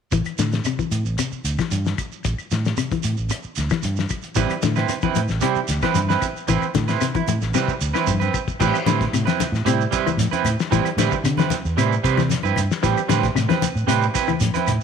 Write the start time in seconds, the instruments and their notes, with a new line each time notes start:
0.12 fingered electric bass A1, clean electric guitar E3, kick, closed hi-hat, shekere
0.25 closed hi-hat, claves, shekere
0.38 fingered electric bass A2, clean electric guitar D3, snare, closed hi-hat, shekere
0.52 snare, closed hi-hat, shekere
0.64 clean electric guitar C3, closed hi-hat, claves, shekere
0.79 clean electric guitar E3, kick, shekere
0.91 fingered electric bass A2, closed hi-hat, shekere
1.05 fingered electric bass A1, shekere
1.18 clean electric guitar C3, closed hi-hat, claves, shekere
1.32 muted fingered electric bass stroke, shekere
1.45 fingered electric bass D2, closed hi-hat, shekere
1.59 clean electric guitar E3, kick, snare, closed hi-hat, claves, shekere
1.71 fingered electric bass G2, closed hi-hat, shekere
1.85 snare, shekere
1.98 kick, closed hi-hat, claves, shekere
2.12 shekere
2.25 fingered electric bass A1, muted clean electric guitar stroke, kick, closed hi-hat, shekere
2.38 muted fingered electric bass stroke, claves, shekere
2.51 fingered electric bass A2, snare, closed hi-hat, shekere
2.65 snare, closed hi-hat, shekere
2.77 clean electric guitar C3, closed hi-hat, claves, shekere
2.91 clean electric guitar E3, kick, closed hi-hat, shekere
3.03 fingered electric bass A2, closed hi-hat, shekere
3.17 fingered electric bass A1, shekere
3.29 muted clean electric guitar stroke, closed hi-hat, claves, shekere
3.43 muted fingered electric bass stroke, shekere
3.56 fingered electric bass D2, snare, closed hi-hat, shekere
3.70 clean electric guitar E3, kick, snare, closed hi-hat, claves, shekere
3.83 fingered electric bass G2, closed hi-hat, shekere
3.96 snare, shekere
4.09 kick, closed hi-hat, claves, shekere
4.22 closed hi-hat, shekere
4.35 fingered electric bass A1, clean electric guitar E3 G3 C4 E4 B4, kick, closed hi-hat, shekere
4.49 muted fingered electric bass stroke, closed hi-hat, claves, shekere
4.62 fingered electric bass A2, clean electric guitar D3, snare, closed hi-hat, high conga, shekere
4.75 clean electric guitar C4 E4 B4, snare, closed hi-hat, shekere
4.88 muted clean electric guitar stroke, closed hi-hat, high conga, claves, shekere
5.02 clean electric guitar E3 C4 E4 B4, kick, high conga, shekere
5.15 fingered electric bass A2, closed hi-hat, high conga, shekere
5.28 fingered electric bass A1, snare, shekere
5.41 clean electric guitar C3 G3 C4 E4, muted clean electric guitar stroke, closed hi-hat, high conga, claves, shekere
5.55 muted fingered electric bass stroke, shekere
5.68 fingered electric bass D2, snare, closed hi-hat, shekere
5.82 clean electric guitar E3 C4 E4 B4, kick, snare, closed hi-hat, claves, shekere
5.95 fingered electric bass G2, closed hi-hat, high conga, shekere
6.09 clean electric guitar C4 E4 B4, snare, shekere
6.21 kick, closed hi-hat, claves, shekere
6.37 shekere
6.48 fingered electric bass A1, clean electric guitar E3 C4 E4 B4, muted clean electric guitar stroke, kick, closed hi-hat, shekere
6.62 claves, shekere
6.75 fingered electric bass A2, clean electric guitar D3, kick, snare, closed hi-hat, high conga, shekere
6.88 clean electric guitar C4 E4 B4, snare, closed hi-hat, shekere
7.01 clean electric guitar C3, snare, closed hi-hat, high conga, claves, shekere
7.15 clean electric guitar E3 E4, muted clean electric guitar stroke, kick, closed hi-hat, high conga, shekere
7.27 fingered electric bass A2, closed hi-hat, high conga, shekere
7.41 fingered electric bass A1, snare, shekere
7.54 clean electric guitar C3 G3 C4 E4 B4, snare, claves, shekere
7.68 muted fingered electric bass stroke, kick, shekere
7.81 fingered electric bass D2, shekere
7.94 clean electric guitar E3 C4 E4 B4, snare, claves, shekere
8.07 fingered electric bass G2, kick, high conga, shekere
8.20 clean electric guitar C4 B4, high conga, shekere
8.34 kick, claves, shekere
8.48 kick, shekere
8.60 fingered electric bass A2, clean electric guitar E3 G3 C4 E4 B4, kick, crash, shekere
8.74 claves, shekere
8.86 fingered electric bass A2, clean electric guitar D3 G3 C4 E4 B4, snare, closed hi-hat, high conga, shekere
9.01 kick, snare, closed hi-hat, shekere
9.13 fingered electric bass A2, clean electric guitar C3, closed hi-hat, high conga, claves, shekere
9.25 clean electric guitar C4 E4 B4, snare, closed hi-hat, high conga, shekere
9.40 muted fingered electric bass stroke, snare, closed hi-hat, high conga, low conga, shekere
9.52 fingered electric bass A2, snare, shekere
9.65 fingered electric bass A2, clean electric guitar C3 G3 C4 E4, muted clean electric guitar stroke, closed hi-hat, high conga, claves, shekere
9.81 shekere
9.91 clean electric guitar G3 C4 E4 B4, kick, closed hi-hat, shekere
10.06 clean electric guitar E3, low conga, claves, shekere
10.17 fingered electric bass A2, closed hi-hat, high conga, shekere
10.31 clean electric guitar C4 E4 B4, muted fingered electric bass stroke, closed hi-hat, high conga, shekere
10.44 fingered electric bass A2, closed hi-hat, low conga, claves, shekere
10.60 snare, shekere
10.71 fingered electric bass A2, clean electric guitar E3 G3 C4 E4 B4, kick, closed hi-hat, high conga, shekere
10.85 muted fingered electric bass stroke, closed hi-hat, claves, shekere
10.97 fingered electric bass A2, clean electric guitar D3 G3 C4 E4 B4, snare, closed hi-hat, high conga, shekere
11.12 kick, shekere
11.24 clean electric guitar C3, fingered electric bass D3, closed hi-hat, high conga, claves, shekere
11.37 clean electric guitar E3 C4 E4 B4, snare, closed hi-hat, high conga, shekere
11.50 muted fingered electric bass stroke, snare, closed hi-hat, high conga, low conga, shekere
11.65 fingered electric bass E2, shekere
11.77 fingered electric bass A2, clean electric guitar C3 G3 C4 E4 B4, closed hi-hat, high conga, claves, shekere
11.92 shekere
12.04 fingered electric bass C3, clean electric guitar G3 C4 B4, kick, closed hi-hat, shekere
12.17 clean electric guitar E3, snare, low conga, claves, shekere
12.29 snare, closed hi-hat, high conga, shekere
12.43 fingered electric bass G2, clean electric guitar C4 E4 B4, high conga, shekere
12.56 fingered electric bass G2, closed hi-hat, low conga, claves, shekere
12.71 snare, shekere
12.82 fingered electric bass A2, clean electric guitar E3 G3 C4 B4, muted clean electric guitar stroke, kick, snare, closed hi-hat, high conga, shekere
12.97 claves, shekere
13.08 fingered electric bass A2, clean electric guitar D3 G3 C4 E4 B4, snare, closed hi-hat, high conga, shekere
13.23 kick, snare, closed hi-hat, shekere
13.35 fingered electric bass A2, clean electric guitar C3, snare, closed hi-hat, high conga, claves, shekere
13.49 clean electric guitar E3 C4 B4, muted clean electric guitar stroke, snare, closed hi-hat, high conga, shekere
13.62 muted fingered electric bass stroke, closed hi-hat, high conga, low conga, shekere
13.75 fingered electric bass A2, shekere
13.87 fingered electric bass A2, clean electric guitar C3 G3 C4 E4 B4, closed hi-hat, claves, shekere
14.02 shekere
14.14 clean electric guitar C4 E4 B4, kick, closed hi-hat, shekere
14.28 clean electric guitar E3, low conga, claves, shekere
14.40 fingered electric bass A2, closed hi-hat, high conga, shekere
14.54 clean electric guitar C4 E4 B4, muted fingered electric bass stroke, closed hi-hat, high conga, shekere
14.67 fingered electric bass A2, closed hi-hat, low conga, claves, shekere